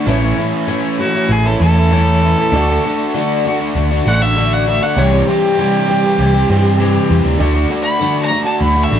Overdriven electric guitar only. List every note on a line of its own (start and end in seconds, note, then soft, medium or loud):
0.06 0.53 A2 loud
0.06 0.36 E3 loud
0.06 0.24 A3 loud
0.06 0.22 C#4 loud
0.06 0.21 E4 loud
0.22 0.38 A3 medium
0.22 0.38 C#4 medium
0.22 0.38 E4 medium
0.37 0.67 E3 medium
0.37 0.69 A3 medium
0.37 0.68 C#4 medium
0.37 0.69 E4 medium
0.68 1.30 A2 loud
0.68 0.98 E3 loud
0.68 1.00 A3 medium
0.68 1.00 C#4 loud
0.68 1.00 E4 loud
0.99 1.46 E3 medium
0.99 1.15 A3 medium
0.99 1.14 C#4 medium
0.99 1.13 E4 medium
1.14 1.46 A3 medium
1.14 1.45 C#4 medium
1.14 1.44 E4 medium
1.45 1.60 A3 medium
1.45 1.61 C#4 medium
1.45 1.62 E4 medium
1.61 1.91 E3 medium
1.61 1.78 A3 medium
1.61 1.77 C#4 medium
1.61 1.76 E4 medium
1.77 1.92 A3 medium
1.77 1.92 C#4 medium
1.77 1.93 E4 medium
1.92 2.51 A2 medium
1.92 2.22 E3 loud
1.92 2.22 A3 medium
1.92 2.23 C#4 loud
1.92 2.24 E4 loud
2.23 2.51 E3 medium
2.23 2.40 A3 medium
2.23 2.39 C#4 medium
2.23 2.38 E4 medium
2.39 2.53 A3 medium
2.39 2.52 C#4 medium
2.39 2.52 E4 medium
2.54 2.84 D3 loud
2.54 2.71 A3 loud
2.54 2.70 D4 loud
2.54 2.69 F#4 loud
2.70 2.84 A3 medium
2.70 2.85 D4 medium
2.70 2.86 F#4 medium
2.85 3.14 D3 medium
2.85 3.14 A3 medium
2.85 3.15 D4 medium
2.85 3.16 F#4 medium
3.15 3.44 D3 loud
3.15 3.45 A3 medium
3.15 3.46 D4 loud
3.15 3.46 F#4 loud
3.45 3.91 D3 medium
3.45 3.61 A3 medium
3.45 3.60 D4 medium
3.45 3.59 F#4 medium
3.60 3.92 A3 medium
3.60 3.91 D4 medium
3.60 3.90 F#4 medium
3.91 4.07 A3 medium
3.91 4.07 D4 medium
3.91 4.08 F#4 medium
4.06 4.35 D3 medium
4.06 4.22 A3 medium
4.06 4.21 D4 medium
4.06 4.20 F#4 medium
4.21 4.36 A3 medium
4.21 4.37 D4 medium
4.21 4.38 F#4 medium
4.36 4.65 D3 medium
4.36 4.66 A3 loud
4.36 4.67 D4 loud
4.36 4.68 F#4 loud
4.66 4.95 D3 medium
4.66 4.83 A3 medium
4.66 4.83 D4 medium
4.66 4.81 F#4 medium
4.82 4.97 A3 medium
4.82 4.96 D4 medium
4.82 4.96 F#4 medium
4.97 5.43 C3 loud
4.97 5.26 E3 loud
4.97 5.14 G3 loud
4.97 5.13 C4 loud
4.97 5.11 G4 loud
5.13 5.27 G3 medium
5.13 5.28 C4 medium
5.13 5.28 G4 medium
5.27 5.57 E3 medium
5.27 5.58 G3 medium
5.27 5.58 C4 medium
5.27 5.59 G4 medium
5.58 6.19 C3 medium
5.58 5.87 E3 medium
5.58 5.88 G3 loud
5.58 5.89 C4 loud
5.58 5.90 G4 loud
5.88 6.34 E3 medium
5.88 6.05 G3 medium
5.88 6.04 C4 medium
5.88 6.03 G4 medium
6.04 6.36 G3 medium
6.04 6.34 C4 medium
6.04 6.33 G4 medium
6.34 6.49 G3 medium
6.34 6.50 C4 medium
6.34 6.50 G4 medium
6.49 6.79 E3 medium
6.49 6.65 G3 medium
6.49 6.64 C4 medium
6.49 6.63 G4 medium
6.64 6.79 G3 medium
6.64 6.80 C4 medium
6.64 6.80 G4 medium
6.79 7.38 C3 medium
6.79 7.08 E3 loud
6.79 7.08 G3 medium
6.79 7.09 C4 loud
6.79 7.10 G4 loud
7.09 7.38 E3 medium
7.09 7.26 G3 medium
7.09 7.25 C4 medium
7.09 7.23 G4 medium
7.25 7.39 G3 medium
7.25 7.39 C4 medium
7.25 7.38 G4 medium
7.39 7.68 D3 medium
7.39 7.56 A3 loud
7.39 7.54 D4 loud
7.39 7.53 F#4 loud
7.54 7.70 A3 medium
7.54 7.70 D4 medium
7.54 7.70 F#4 medium
7.70 7.98 D3 medium
7.70 8.00 A3 medium
7.70 8.00 D4 medium
7.70 8.01 F#4 medium
8.00 8.29 D3 medium
8.00 8.31 A3 loud
8.00 8.30 D4 loud
8.00 8.31 F#4 loud
8.30 8.76 D3 medium
8.30 8.46 A3 medium
8.30 8.45 D4 medium
8.30 8.44 F#4 medium
8.45 8.78 A3 medium
8.45 8.76 D4 medium
8.45 8.74 F#4 medium
8.75 8.90 A3 medium
8.75 8.90 D4 medium
8.75 8.91 F#4 medium
8.90 9.00 D3 medium
8.90 9.00 A3 medium
8.90 9.00 D4 medium
8.90 9.00 F#4 medium